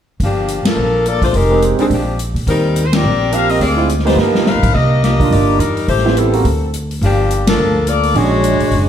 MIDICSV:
0, 0, Header, 1, 7, 480
1, 0, Start_track
1, 0, Key_signature, -2, "minor"
1, 0, Tempo, 283822
1, 343, Time_signature, 4, 2, 24, 8
1, 15033, End_track
2, 0, Start_track
2, 0, Title_t, "Saxophone section"
2, 0, Program_c, 0, 65
2, 395, Note_on_c, 0, 67, 73
2, 396, Note_on_c, 0, 53, 63
2, 398, Note_on_c, 0, 58, 64
2, 403, Note_on_c, 0, 62, 68
2, 1081, Note_off_c, 0, 67, 0
2, 1082, Note_off_c, 0, 53, 0
2, 1083, Note_off_c, 0, 58, 0
2, 1086, Note_off_c, 0, 62, 0
2, 1122, Note_on_c, 0, 62, 73
2, 1126, Note_on_c, 0, 70, 82
2, 1135, Note_on_c, 0, 69, 69
2, 1136, Note_on_c, 0, 53, 72
2, 1791, Note_off_c, 0, 69, 0
2, 1792, Note_off_c, 0, 62, 0
2, 1794, Note_off_c, 0, 70, 0
2, 1799, Note_off_c, 0, 53, 0
2, 1810, Note_on_c, 0, 74, 86
2, 1811, Note_on_c, 0, 69, 76
2, 1814, Note_on_c, 0, 58, 76
2, 1819, Note_on_c, 0, 65, 79
2, 2058, Note_off_c, 0, 65, 0
2, 2074, Note_on_c, 0, 57, 68
2, 2076, Note_on_c, 0, 62, 68
2, 2078, Note_on_c, 0, 65, 69
2, 2081, Note_off_c, 0, 69, 0
2, 2081, Note_off_c, 0, 74, 0
2, 2083, Note_off_c, 0, 58, 0
2, 2084, Note_on_c, 0, 72, 78
2, 2254, Note_off_c, 0, 57, 0
2, 2256, Note_off_c, 0, 62, 0
2, 2257, Note_off_c, 0, 65, 0
2, 2260, Note_off_c, 0, 72, 0
2, 2282, Note_on_c, 0, 67, 71
2, 2284, Note_on_c, 0, 56, 72
2, 2284, Note_on_c, 0, 63, 78
2, 2292, Note_on_c, 0, 70, 87
2, 2754, Note_off_c, 0, 67, 0
2, 2755, Note_off_c, 0, 56, 0
2, 2755, Note_off_c, 0, 63, 0
2, 2759, Note_off_c, 0, 70, 0
2, 3040, Note_on_c, 0, 55, 60
2, 3041, Note_on_c, 0, 68, 70
2, 3045, Note_on_c, 0, 60, 60
2, 3050, Note_on_c, 0, 51, 59
2, 3126, Note_off_c, 0, 55, 0
2, 3127, Note_off_c, 0, 68, 0
2, 3130, Note_off_c, 0, 60, 0
2, 3134, Note_off_c, 0, 51, 0
2, 3251, Note_on_c, 0, 60, 60
2, 3255, Note_on_c, 0, 62, 62
2, 3257, Note_on_c, 0, 67, 69
2, 3259, Note_on_c, 0, 53, 61
2, 3686, Note_off_c, 0, 60, 0
2, 3688, Note_off_c, 0, 62, 0
2, 3689, Note_off_c, 0, 67, 0
2, 3690, Note_off_c, 0, 53, 0
2, 4203, Note_on_c, 0, 70, 84
2, 4204, Note_on_c, 0, 60, 76
2, 4205, Note_on_c, 0, 55, 73
2, 4205, Note_on_c, 0, 63, 72
2, 4775, Note_off_c, 0, 70, 0
2, 4776, Note_off_c, 0, 55, 0
2, 4776, Note_off_c, 0, 60, 0
2, 4776, Note_off_c, 0, 63, 0
2, 4829, Note_on_c, 0, 72, 67
2, 4960, Note_off_c, 0, 72, 0
2, 4971, Note_on_c, 0, 67, 80
2, 4971, Note_on_c, 0, 70, 79
2, 4973, Note_on_c, 0, 60, 77
2, 4981, Note_on_c, 0, 74, 92
2, 5607, Note_off_c, 0, 67, 0
2, 5608, Note_off_c, 0, 70, 0
2, 5624, Note_on_c, 0, 62, 84
2, 5626, Note_on_c, 0, 77, 97
2, 5628, Note_on_c, 0, 67, 80
2, 5628, Note_on_c, 0, 70, 77
2, 5638, Note_off_c, 0, 60, 0
2, 5642, Note_off_c, 0, 74, 0
2, 5886, Note_off_c, 0, 70, 0
2, 5893, Note_off_c, 0, 67, 0
2, 5903, Note_on_c, 0, 75, 85
2, 5906, Note_on_c, 0, 60, 72
2, 5906, Note_on_c, 0, 70, 75
2, 5909, Note_off_c, 0, 62, 0
2, 5910, Note_off_c, 0, 77, 0
2, 5913, Note_on_c, 0, 67, 74
2, 6084, Note_off_c, 0, 60, 0
2, 6103, Note_on_c, 0, 74, 91
2, 6104, Note_off_c, 0, 75, 0
2, 6104, Note_on_c, 0, 60, 78
2, 6104, Note_on_c, 0, 68, 76
2, 6105, Note_off_c, 0, 70, 0
2, 6108, Note_off_c, 0, 67, 0
2, 6109, Note_on_c, 0, 65, 80
2, 6551, Note_off_c, 0, 74, 0
2, 6552, Note_off_c, 0, 60, 0
2, 6552, Note_off_c, 0, 68, 0
2, 6554, Note_off_c, 0, 65, 0
2, 6852, Note_on_c, 0, 72, 78
2, 6856, Note_on_c, 0, 62, 65
2, 6861, Note_on_c, 0, 56, 65
2, 6866, Note_on_c, 0, 65, 65
2, 7044, Note_off_c, 0, 72, 0
2, 7045, Note_off_c, 0, 62, 0
2, 7048, Note_off_c, 0, 56, 0
2, 7051, Note_off_c, 0, 65, 0
2, 7060, Note_on_c, 0, 53, 72
2, 7064, Note_on_c, 0, 70, 81
2, 7072, Note_on_c, 0, 59, 72
2, 7073, Note_on_c, 0, 63, 69
2, 7528, Note_off_c, 0, 70, 0
2, 7536, Note_off_c, 0, 63, 0
2, 7543, Note_off_c, 0, 53, 0
2, 7549, Note_off_c, 0, 59, 0
2, 7549, Note_on_c, 0, 70, 71
2, 7557, Note_on_c, 0, 63, 71
2, 7559, Note_on_c, 0, 77, 85
2, 7566, Note_on_c, 0, 71, 78
2, 8012, Note_on_c, 0, 75, 91
2, 8016, Note_on_c, 0, 58, 77
2, 8022, Note_on_c, 0, 62, 77
2, 8024, Note_on_c, 0, 67, 72
2, 8028, Note_off_c, 0, 70, 0
2, 8032, Note_off_c, 0, 63, 0
2, 8033, Note_off_c, 0, 77, 0
2, 8036, Note_off_c, 0, 71, 0
2, 8477, Note_off_c, 0, 67, 0
2, 8480, Note_off_c, 0, 62, 0
2, 8481, Note_off_c, 0, 58, 0
2, 8487, Note_off_c, 0, 75, 0
2, 8497, Note_on_c, 0, 67, 65
2, 8500, Note_on_c, 0, 62, 69
2, 8501, Note_on_c, 0, 58, 70
2, 8508, Note_on_c, 0, 75, 78
2, 8944, Note_off_c, 0, 67, 0
2, 8949, Note_off_c, 0, 62, 0
2, 8950, Note_off_c, 0, 58, 0
2, 8954, Note_off_c, 0, 75, 0
2, 8964, Note_on_c, 0, 67, 71
2, 8967, Note_on_c, 0, 63, 70
2, 8973, Note_on_c, 0, 58, 72
2, 8980, Note_on_c, 0, 74, 87
2, 9435, Note_off_c, 0, 63, 0
2, 9448, Note_on_c, 0, 62, 66
2, 9450, Note_on_c, 0, 70, 78
2, 9452, Note_on_c, 0, 55, 64
2, 9455, Note_off_c, 0, 67, 0
2, 9455, Note_on_c, 0, 63, 66
2, 9460, Note_off_c, 0, 58, 0
2, 9463, Note_off_c, 0, 74, 0
2, 9937, Note_off_c, 0, 62, 0
2, 9938, Note_off_c, 0, 70, 0
2, 9939, Note_off_c, 0, 55, 0
2, 9940, Note_on_c, 0, 57, 69
2, 9941, Note_off_c, 0, 63, 0
2, 9943, Note_on_c, 0, 67, 69
2, 9944, Note_on_c, 0, 72, 84
2, 9947, Note_on_c, 0, 64, 73
2, 10389, Note_off_c, 0, 57, 0
2, 10391, Note_off_c, 0, 67, 0
2, 10391, Note_off_c, 0, 72, 0
2, 10393, Note_off_c, 0, 64, 0
2, 10436, Note_on_c, 0, 55, 59
2, 10438, Note_on_c, 0, 60, 59
2, 10439, Note_on_c, 0, 64, 59
2, 10440, Note_on_c, 0, 69, 66
2, 10911, Note_off_c, 0, 55, 0
2, 10912, Note_off_c, 0, 64, 0
2, 11391, Note_off_c, 0, 60, 0
2, 11392, Note_off_c, 0, 69, 0
2, 11894, Note_on_c, 0, 53, 68
2, 11896, Note_on_c, 0, 62, 74
2, 11898, Note_on_c, 0, 58, 73
2, 11904, Note_on_c, 0, 67, 83
2, 12590, Note_off_c, 0, 53, 0
2, 12591, Note_off_c, 0, 58, 0
2, 12591, Note_off_c, 0, 62, 0
2, 12595, Note_off_c, 0, 67, 0
2, 12645, Note_on_c, 0, 70, 86
2, 12650, Note_on_c, 0, 53, 72
2, 12654, Note_on_c, 0, 62, 75
2, 12655, Note_on_c, 0, 69, 76
2, 13265, Note_off_c, 0, 70, 0
2, 13268, Note_off_c, 0, 53, 0
2, 13270, Note_off_c, 0, 62, 0
2, 13271, Note_off_c, 0, 69, 0
2, 13325, Note_on_c, 0, 74, 98
2, 13332, Note_on_c, 0, 58, 81
2, 13334, Note_on_c, 0, 65, 82
2, 13336, Note_on_c, 0, 69, 77
2, 13793, Note_off_c, 0, 74, 0
2, 13797, Note_off_c, 0, 58, 0
2, 13798, Note_off_c, 0, 65, 0
2, 13799, Note_off_c, 0, 69, 0
2, 13805, Note_on_c, 0, 66, 80
2, 13808, Note_on_c, 0, 62, 77
2, 13811, Note_on_c, 0, 73, 87
2, 13814, Note_on_c, 0, 56, 80
2, 15033, Note_off_c, 0, 56, 0
2, 15033, Note_off_c, 0, 62, 0
2, 15033, Note_off_c, 0, 66, 0
2, 15033, Note_off_c, 0, 73, 0
2, 15033, End_track
3, 0, Start_track
3, 0, Title_t, "Grand piano"
3, 0, Program_c, 1, 0
3, 2549, Note_on_c, 1, 60, 56
3, 2555, Note_on_c, 1, 56, 61
3, 2559, Note_on_c, 1, 63, 54
3, 2568, Note_on_c, 1, 67, 65
3, 2996, Note_off_c, 1, 56, 0
3, 3001, Note_off_c, 1, 60, 0
3, 3006, Note_off_c, 1, 63, 0
3, 3006, Note_off_c, 1, 67, 0
3, 3021, Note_on_c, 1, 56, 54
3, 3028, Note_on_c, 1, 60, 49
3, 3031, Note_on_c, 1, 62, 48
3, 3031, Note_on_c, 1, 67, 60
3, 3202, Note_off_c, 1, 56, 0
3, 3205, Note_off_c, 1, 60, 0
3, 3207, Note_off_c, 1, 62, 0
3, 3207, Note_off_c, 1, 67, 0
3, 5611, Note_on_c, 1, 58, 51
3, 5617, Note_on_c, 1, 60, 47
3, 5619, Note_on_c, 1, 65, 49
3, 5626, Note_on_c, 1, 67, 54
3, 6099, Note_off_c, 1, 58, 0
3, 6102, Note_off_c, 1, 60, 0
3, 6103, Note_off_c, 1, 65, 0
3, 6106, Note_off_c, 1, 67, 0
3, 6371, Note_on_c, 1, 56, 54
3, 6371, Note_on_c, 1, 60, 54
3, 6377, Note_on_c, 1, 65, 64
3, 6382, Note_on_c, 1, 64, 54
3, 6557, Note_off_c, 1, 56, 0
3, 6558, Note_off_c, 1, 60, 0
3, 6560, Note_off_c, 1, 65, 0
3, 6563, Note_off_c, 1, 64, 0
3, 6849, Note_on_c, 1, 58, 65
3, 6860, Note_on_c, 1, 59, 58
3, 6863, Note_on_c, 1, 63, 54
3, 6869, Note_on_c, 1, 67, 67
3, 7497, Note_off_c, 1, 58, 0
3, 7503, Note_off_c, 1, 59, 0
3, 7504, Note_off_c, 1, 63, 0
3, 7507, Note_off_c, 1, 67, 0
3, 8788, Note_on_c, 1, 58, 55
3, 8796, Note_on_c, 1, 62, 52
3, 8807, Note_on_c, 1, 63, 49
3, 8807, Note_on_c, 1, 65, 63
3, 9426, Note_off_c, 1, 58, 0
3, 9430, Note_off_c, 1, 62, 0
3, 9436, Note_off_c, 1, 63, 0
3, 9436, Note_off_c, 1, 65, 0
3, 10231, Note_on_c, 1, 59, 60
3, 10239, Note_on_c, 1, 60, 54
3, 10242, Note_on_c, 1, 64, 58
3, 10242, Note_on_c, 1, 67, 68
3, 10681, Note_off_c, 1, 59, 0
3, 10686, Note_off_c, 1, 60, 0
3, 10687, Note_off_c, 1, 64, 0
3, 10687, Note_off_c, 1, 67, 0
3, 10710, Note_on_c, 1, 58, 56
3, 10716, Note_on_c, 1, 60, 46
3, 10723, Note_on_c, 1, 66, 49
3, 10726, Note_on_c, 1, 70, 58
3, 10887, Note_off_c, 1, 58, 0
3, 10889, Note_off_c, 1, 60, 0
3, 10893, Note_off_c, 1, 66, 0
3, 10895, Note_off_c, 1, 70, 0
3, 13789, Note_on_c, 1, 61, 47
3, 13797, Note_on_c, 1, 62, 44
3, 13801, Note_on_c, 1, 68, 54
3, 13804, Note_on_c, 1, 66, 44
3, 14040, Note_off_c, 1, 61, 0
3, 14044, Note_off_c, 1, 62, 0
3, 14046, Note_off_c, 1, 68, 0
3, 14048, Note_off_c, 1, 66, 0
3, 15033, End_track
4, 0, Start_track
4, 0, Title_t, "Trombone section"
4, 0, Program_c, 2, 61
4, 13780, Note_on_c, 2, 54, 77
4, 13780, Note_on_c, 2, 62, 76
4, 13788, Note_on_c, 2, 56, 76
4, 15033, Note_off_c, 2, 54, 0
4, 15033, Note_off_c, 2, 56, 0
4, 15033, Note_off_c, 2, 62, 0
4, 15033, End_track
5, 0, Start_track
5, 0, Title_t, "Upright bass"
5, 0, Program_c, 3, 32
5, 336, Note_on_c, 3, 31, 70
5, 1050, Note_off_c, 3, 31, 0
5, 1293, Note_on_c, 3, 34, 70
5, 2211, Note_off_c, 3, 34, 0
5, 2248, Note_on_c, 3, 29, 72
5, 2966, Note_off_c, 3, 29, 0
5, 3214, Note_on_c, 3, 34, 75
5, 3930, Note_off_c, 3, 34, 0
5, 3964, Note_on_c, 3, 46, 60
5, 4159, Note_off_c, 3, 46, 0
5, 4173, Note_on_c, 3, 39, 78
5, 5092, Note_off_c, 3, 39, 0
5, 5137, Note_on_c, 3, 34, 78
5, 6053, Note_off_c, 3, 34, 0
5, 6090, Note_on_c, 3, 38, 75
5, 7010, Note_off_c, 3, 38, 0
5, 7033, Note_on_c, 3, 31, 75
5, 7644, Note_off_c, 3, 31, 0
5, 7694, Note_on_c, 3, 35, 53
5, 7837, Note_off_c, 3, 35, 0
5, 7847, Note_on_c, 3, 34, 57
5, 8005, Note_off_c, 3, 34, 0
5, 8023, Note_on_c, 3, 36, 74
5, 8936, Note_off_c, 3, 36, 0
5, 8981, Note_on_c, 3, 31, 76
5, 9430, Note_off_c, 3, 31, 0
5, 9453, Note_on_c, 3, 40, 67
5, 9905, Note_off_c, 3, 40, 0
5, 9946, Note_on_c, 3, 33, 77
5, 10858, Note_off_c, 3, 33, 0
5, 10900, Note_on_c, 3, 38, 77
5, 11814, Note_off_c, 3, 38, 0
5, 11861, Note_on_c, 3, 31, 79
5, 12774, Note_off_c, 3, 31, 0
5, 12820, Note_on_c, 3, 38, 79
5, 13732, Note_off_c, 3, 38, 0
5, 13777, Note_on_c, 3, 34, 80
5, 14488, Note_off_c, 3, 34, 0
5, 14531, Note_on_c, 3, 33, 57
5, 14720, Note_off_c, 3, 33, 0
5, 14729, Note_on_c, 3, 30, 76
5, 15033, Note_off_c, 3, 30, 0
5, 15033, End_track
6, 0, Start_track
6, 0, Title_t, "Muted upright bass strokes"
6, 1106, Note_on_c, 9, 29, 33
6, 1275, Note_off_c, 9, 29, 0
6, 15033, End_track
7, 0, Start_track
7, 0, Title_t, "Drums"
7, 336, Note_on_c, 9, 36, 30
7, 341, Note_on_c, 9, 46, 39
7, 505, Note_off_c, 9, 36, 0
7, 510, Note_off_c, 9, 46, 0
7, 818, Note_on_c, 9, 42, 47
7, 987, Note_off_c, 9, 42, 0
7, 1100, Note_on_c, 9, 38, 72
7, 1104, Note_on_c, 9, 51, 60
7, 1269, Note_off_c, 9, 38, 0
7, 1273, Note_off_c, 9, 51, 0
7, 1785, Note_on_c, 9, 42, 47
7, 1954, Note_off_c, 9, 42, 0
7, 2061, Note_on_c, 9, 36, 45
7, 2068, Note_on_c, 9, 46, 36
7, 2230, Note_off_c, 9, 36, 0
7, 2237, Note_off_c, 9, 46, 0
7, 2254, Note_on_c, 9, 36, 29
7, 2262, Note_on_c, 9, 46, 39
7, 2423, Note_off_c, 9, 36, 0
7, 2432, Note_off_c, 9, 46, 0
7, 2744, Note_on_c, 9, 42, 49
7, 2913, Note_off_c, 9, 42, 0
7, 3021, Note_on_c, 9, 46, 34
7, 3190, Note_off_c, 9, 46, 0
7, 3218, Note_on_c, 9, 36, 30
7, 3223, Note_on_c, 9, 46, 41
7, 3387, Note_off_c, 9, 36, 0
7, 3393, Note_off_c, 9, 46, 0
7, 3705, Note_on_c, 9, 42, 48
7, 3874, Note_off_c, 9, 42, 0
7, 3992, Note_on_c, 9, 46, 36
7, 4162, Note_off_c, 9, 46, 0
7, 4178, Note_on_c, 9, 36, 30
7, 4183, Note_on_c, 9, 46, 39
7, 4347, Note_off_c, 9, 36, 0
7, 4352, Note_off_c, 9, 46, 0
7, 4666, Note_on_c, 9, 42, 49
7, 4835, Note_off_c, 9, 42, 0
7, 4949, Note_on_c, 9, 38, 72
7, 4953, Note_on_c, 9, 51, 61
7, 5118, Note_off_c, 9, 38, 0
7, 5122, Note_off_c, 9, 51, 0
7, 5622, Note_on_c, 9, 42, 48
7, 5791, Note_off_c, 9, 42, 0
7, 5908, Note_on_c, 9, 46, 36
7, 6077, Note_off_c, 9, 46, 0
7, 6096, Note_on_c, 9, 36, 31
7, 6105, Note_on_c, 9, 46, 41
7, 6265, Note_off_c, 9, 36, 0
7, 6274, Note_off_c, 9, 46, 0
7, 6586, Note_on_c, 9, 42, 48
7, 6747, Note_on_c, 9, 38, 24
7, 6755, Note_off_c, 9, 42, 0
7, 6876, Note_on_c, 9, 46, 35
7, 6901, Note_off_c, 9, 38, 0
7, 6901, Note_on_c, 9, 38, 38
7, 7045, Note_off_c, 9, 46, 0
7, 7070, Note_off_c, 9, 38, 0
7, 7071, Note_on_c, 9, 38, 40
7, 7240, Note_off_c, 9, 38, 0
7, 7353, Note_on_c, 9, 38, 54
7, 7522, Note_off_c, 9, 38, 0
7, 7544, Note_on_c, 9, 38, 48
7, 7713, Note_off_c, 9, 38, 0
7, 7832, Note_on_c, 9, 36, 66
7, 7836, Note_on_c, 9, 49, 65
7, 8001, Note_off_c, 9, 36, 0
7, 8005, Note_off_c, 9, 49, 0
7, 8029, Note_on_c, 9, 36, 30
7, 8198, Note_off_c, 9, 36, 0
7, 8515, Note_on_c, 9, 38, 35
7, 8518, Note_on_c, 9, 42, 48
7, 8684, Note_off_c, 9, 38, 0
7, 8687, Note_off_c, 9, 42, 0
7, 8795, Note_on_c, 9, 36, 48
7, 8802, Note_on_c, 9, 46, 35
7, 8964, Note_off_c, 9, 36, 0
7, 8971, Note_off_c, 9, 46, 0
7, 8990, Note_on_c, 9, 36, 30
7, 9002, Note_on_c, 9, 46, 43
7, 9159, Note_off_c, 9, 36, 0
7, 9171, Note_off_c, 9, 46, 0
7, 9471, Note_on_c, 9, 42, 50
7, 9640, Note_off_c, 9, 42, 0
7, 9755, Note_on_c, 9, 46, 36
7, 9924, Note_off_c, 9, 46, 0
7, 9947, Note_on_c, 9, 36, 31
7, 9949, Note_on_c, 9, 46, 40
7, 10114, Note_on_c, 9, 38, 25
7, 10116, Note_off_c, 9, 36, 0
7, 10118, Note_off_c, 9, 46, 0
7, 10267, Note_off_c, 9, 38, 0
7, 10267, Note_on_c, 9, 38, 40
7, 10430, Note_on_c, 9, 42, 46
7, 10436, Note_off_c, 9, 38, 0
7, 10599, Note_off_c, 9, 42, 0
7, 10713, Note_on_c, 9, 46, 37
7, 10882, Note_off_c, 9, 46, 0
7, 10905, Note_on_c, 9, 36, 29
7, 10906, Note_on_c, 9, 46, 40
7, 11074, Note_off_c, 9, 36, 0
7, 11076, Note_off_c, 9, 46, 0
7, 11391, Note_on_c, 9, 42, 50
7, 11560, Note_off_c, 9, 42, 0
7, 11684, Note_on_c, 9, 46, 36
7, 11853, Note_off_c, 9, 46, 0
7, 11869, Note_on_c, 9, 36, 29
7, 11878, Note_on_c, 9, 46, 40
7, 12038, Note_off_c, 9, 36, 0
7, 12047, Note_off_c, 9, 46, 0
7, 12355, Note_on_c, 9, 42, 51
7, 12524, Note_off_c, 9, 42, 0
7, 12634, Note_on_c, 9, 38, 78
7, 12638, Note_on_c, 9, 51, 64
7, 12804, Note_off_c, 9, 38, 0
7, 12807, Note_off_c, 9, 51, 0
7, 13306, Note_on_c, 9, 42, 50
7, 13475, Note_off_c, 9, 42, 0
7, 13587, Note_on_c, 9, 46, 38
7, 13756, Note_off_c, 9, 46, 0
7, 13783, Note_on_c, 9, 36, 31
7, 13789, Note_on_c, 9, 46, 40
7, 13952, Note_off_c, 9, 36, 0
7, 13958, Note_off_c, 9, 46, 0
7, 14267, Note_on_c, 9, 42, 49
7, 14437, Note_off_c, 9, 42, 0
7, 14548, Note_on_c, 9, 46, 36
7, 14718, Note_off_c, 9, 46, 0
7, 14735, Note_on_c, 9, 36, 30
7, 14739, Note_on_c, 9, 46, 40
7, 14904, Note_off_c, 9, 36, 0
7, 14908, Note_off_c, 9, 46, 0
7, 15033, End_track
0, 0, End_of_file